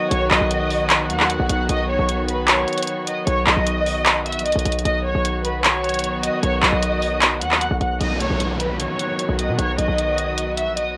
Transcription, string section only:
0.00 4.81 D#3 medium
0.00 4.81 F#3 medium
0.00 4.81 B3 medium
0.00 4.81 F#4 medium
4.85 7.98 D#3 medium
4.85 7.98 F#3 medium
4.85 7.98 B3 medium
4.85 7.98 F#4 medium
8.01 10.97 D#3 medium
8.01 10.97 F#3 medium
8.01 10.97 B3 medium
8.01 10.97 F#4 medium

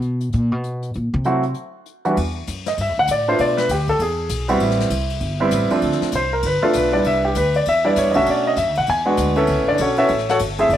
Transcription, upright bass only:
0.00 0.30 B2 loud
0.34 0.52 A#2 medium
0.52 0.94 B2 loud
0.95 1.13 A#2 medium
1.14 1.52 C3 loud
2.17 2.46 E2 medium
2.48 2.77 F#2 medium
2.78 2.89 G2 medium
2.89 2.97 E2 medium
2.98 3.07 D2 medium
3.08 3.38 A2 medium
3.39 3.68 B2 medium
3.69 3.98 D2 medium
3.99 4.29 E2 medium
4.30 4.59 B1 medium
4.61 4.89 A1 medium
4.90 5.20 C2 medium
5.21 5.51 G1 medium
5.52 5.69 A1 medium
5.70 muted upright bass stroke soft
5.82 6.00 D2 medium
6.01 muted upright bass stroke soft
6.13 6.42 C2 medium
6.43 6.61 G1 medium
6.63 muted upright bass stroke soft
6.75 7.04 B1 medium
7.05 7.34 C2 medium
7.35 7.64 D2 medium
7.66 7.95 E2 medium
7.96 8.07 G2 medium
8.07 8.15 E2 medium
8.16 8.25 C2 medium
8.26 8.56 B2 medium
8.57 8.67 F#2 medium
8.67 8.77 D2 medium
8.78 8.87 B1 medium
8.88 9.17 E2 medium
9.17 9.47 D2 medium
9.48 9.58 C#2 medium
9.59 9.68 A1 medium
9.69 9.78 F#1 medium
9.79 10.09 B1 medium
10.10 10.39 A1 medium
10.40 10.69 G1 medium
10.69 10.77 F#1 medium

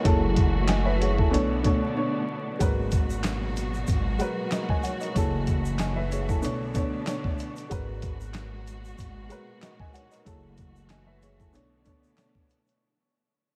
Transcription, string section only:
0.05 1.31 E3 medium
0.05 1.31 F#3 medium
0.05 1.31 A3 medium
0.05 1.31 F#4 medium
1.33 2.59 D3 medium
1.33 2.59 A3 medium
1.33 2.59 B3 medium
1.33 2.59 D4 medium
2.60 5.13 A#2 medium
2.60 5.13 B2 medium
2.60 6.39 F#3 medium
2.60 6.39 F#4 medium
5.16 6.42 E3 medium
5.16 7.69 A3 medium
6.43 7.70 D3 medium
6.43 7.70 B3 medium
6.43 7.70 D4 medium
7.71 10.24 A#2 medium
7.71 10.24 B2 medium
7.71 10.24 G#3 medium
7.71 10.24 F#4 medium
10.27 11.53 E3 medium
10.27 11.53 F#3 medium
10.27 11.53 A3 medium
10.27 11.53 F#4 medium
11.54 12.80 D3 medium
11.54 12.80 A3 medium
11.54 12.80 B3 medium
11.54 12.80 D4 medium

